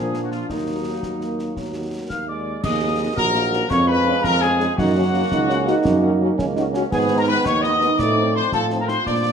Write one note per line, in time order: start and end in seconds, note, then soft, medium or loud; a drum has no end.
0.00 0.43 A#2 medium
0.00 0.33 F3 medium
0.00 0.46 F3 medium
0.00 0.34 A#3 medium
0.00 0.49 A#3 medium
0.00 0.50 D4 medium
0.00 0.22 G#4 medium
0.14 snare medium
0.23 0.27 F#4 medium
0.31 0.48 F4 medium
0.31 snare soft
0.49 0.97 D#2 medium
0.49 2.46 F#3 medium
0.49 2.47 F#3 medium
0.49 2.42 A#3 medium
0.49 2.43 A#3 medium
0.49 1.93 D#4 medium
0.49 2.46 D#4 medium
0.49 concert bass drum medium
0.49 snare medium
1.03 1.50 D#2 medium
1.03 1.53 A#3 medium
1.03 concert bass drum medium
1.03 snare medium
1.21 snare soft
1.39 snare soft
1.57 2.04 D#2 medium
1.57 2.13 F#3 soft
1.57 concert bass drum medium
1.57 snare medium
2.09 2.57 D#2 medium
2.09 2.29 A#3 medium
2.09 2.26 F5 medium
2.09 2.26 F6 medium
2.09 concert bass drum medium
2.09 snare medium
2.28 2.62 G#3 medium
2.28 2.64 D5 medium
2.28 2.61 D6 medium
2.63 3.08 D#2 medium
2.63 3.67 F#3 medium
2.63 3.67 A#3 medium
2.63 3.19 G#4 medium
2.63 3.13 D#5 medium
2.63 3.13 D#6 loud
2.63 concert bass drum medium
2.63 snare medium
2.63 crash medium
2.81 2.88 F#3 medium
2.81 2.88 A#3 medium
2.81 2.87 D#4 medium
2.99 3.05 F#3 medium
2.99 3.06 A#3 medium
2.99 3.05 D#4 medium
3.16 3.62 A#1 medium
3.16 3.69 F#4 medium
3.16 3.67 A#4 loud
3.16 3.67 A#5 medium
3.16 concert bass drum medium
3.16 snare medium
3.34 3.41 F#3 medium
3.34 3.41 A#3 medium
3.34 3.41 D#4 medium
3.34 snare medium
3.52 3.59 F#3 medium
3.52 3.59 A#3 medium
3.52 3.59 D#4 medium
3.52 snare medium
3.70 4.15 F2 loud
3.70 4.78 F3 medium
3.70 4.78 G#3 medium
3.70 4.73 F4 medium
3.70 3.88 C#5 loud
3.70 3.89 C#6 loud
3.70 concert bass drum medium
3.70 snare medium
3.87 3.94 G#3 medium
3.87 3.94 C#4 medium
3.87 3.94 G#4 medium
3.87 4.21 B4 loud
3.87 4.25 B5 medium
4.06 4.12 G#3 medium
4.06 4.13 C#4 medium
4.06 4.13 G#4 medium
4.23 4.69 F2 medium
4.23 4.42 A#4 loud
4.23 4.40 A#5 loud
4.23 concert bass drum medium
4.23 snare medium
4.40 4.48 G#3 medium
4.40 4.48 C#4 medium
4.40 4.77 G#4 loud
4.40 4.48 G#4 medium
4.40 4.74 G#5 loud
4.40 snare medium
4.60 4.66 G#3 medium
4.60 4.67 C#4 medium
4.60 4.67 G#4 medium
4.60 snare medium
4.77 5.23 F#2 loud
4.77 6.88 C#3 medium
4.77 6.88 A#3 medium
4.77 4.95 D#4 loud
4.77 6.38 F#4 loud
4.77 6.34 F#5 loud
4.77 concert bass drum loud
4.77 snare medium
4.96 5.02 A#3 medium
4.96 5.02 C#4 medium
4.96 5.05 C#4 medium
4.96 5.02 F#4 medium
5.13 5.30 A#3 medium
5.13 5.20 A#3 medium
5.13 5.20 C#4 medium
5.13 5.20 F#4 medium
5.32 5.72 C#2 loud
5.32 5.51 D#4 medium
5.32 concert bass drum medium
5.32 snare medium
5.49 5.56 A#3 medium
5.49 5.67 C#4 medium
5.49 5.56 C#4 medium
5.49 5.56 F#4 medium
5.49 snare medium
5.67 5.73 A#3 medium
5.67 5.73 C#4 medium
5.67 6.35 D#4 loud
5.67 5.73 F#4 medium
5.67 snare medium
5.85 6.30 F#2 loud
5.85 concert bass drum medium
5.85 snare medium
6.03 6.09 A#3 medium
6.03 6.09 C#4 medium
6.03 6.09 F#4 medium
6.21 6.27 A#3 medium
6.21 6.28 C#4 medium
6.21 6.28 F#4 medium
6.38 6.83 C#2 loud
6.38 6.46 C#4 loud
6.38 concert bass drum medium
6.38 snare medium
6.56 6.63 A#3 medium
6.56 6.63 C#4 medium
6.56 6.64 D#4 loud
6.56 6.63 F#4 medium
6.56 snare medium
6.73 6.81 A#3 medium
6.73 6.82 C#4 loud
6.73 6.81 C#4 medium
6.73 6.81 F#4 medium
6.73 snare medium
6.91 7.36 G#2 loud
6.91 7.95 D#3 medium
6.91 7.47 B3 loud
6.91 7.95 B3 medium
6.91 7.17 G#4 loud
6.91 6.98 G#5 loud
6.91 concert bass drum medium
6.91 snare medium
6.91 crash soft
7.11 7.17 G#3 medium
7.11 7.17 B3 medium
7.11 7.17 D#4 medium
7.18 7.23 A#4 loud
7.18 7.22 A#5 loud
7.27 7.35 G#3 medium
7.27 7.35 B3 medium
7.27 7.35 D#4 medium
7.27 7.44 B4 loud
7.27 7.44 B5 medium
7.45 7.90 D#2 medium
7.45 8.36 D#4 loud
7.45 7.63 C#5 loud
7.45 7.62 C#6 loud
7.45 concert bass drum medium
7.45 snare medium
7.62 7.70 G#3 medium
7.62 7.70 B3 medium
7.62 7.70 D#4 medium
7.62 7.98 D#5 loud
7.62 8.00 D#6 loud
7.62 snare medium
7.81 7.88 G#3 medium
7.81 7.88 B3 medium
7.81 7.88 D#4 medium
7.81 snare medium
7.98 8.44 A2 loud
7.98 9.05 F3 medium
7.98 9.06 C4 medium
7.98 8.35 D5 loud
7.98 8.37 D6 loud
7.98 concert bass drum medium
7.98 snare medium
8.17 8.23 F3 medium
8.17 8.24 C4 medium
8.17 8.24 D#4 medium
8.35 8.42 F3 medium
8.35 8.41 C4 medium
8.35 8.41 D#4 medium
8.35 8.51 C5 loud
8.35 8.52 C6 medium
8.52 8.97 A2 medium
8.52 9.03 F4 medium
8.52 8.65 A4 loud
8.52 8.78 A5 medium
8.52 concert bass drum medium
8.52 snare medium
8.70 8.77 F3 medium
8.70 8.78 C4 medium
8.70 8.77 D#4 medium
8.70 snare medium
8.80 8.88 A#4 medium
8.80 8.87 A#5 medium
8.88 8.95 F3 medium
8.88 8.95 C4 medium
8.88 8.95 D#4 medium
8.88 9.06 C5 loud
8.88 9.05 C6 medium
8.88 snare medium
9.06 9.32 A#2 medium
9.06 9.32 F3 medium
9.06 9.32 A#3 medium
9.06 9.32 D4 medium
9.06 9.32 D5 loud
9.06 9.32 D6 medium
9.06 concert bass drum medium
9.06 snare medium
9.25 9.31 F3 medium
9.25 9.31 A#3 medium
9.25 9.31 F4 medium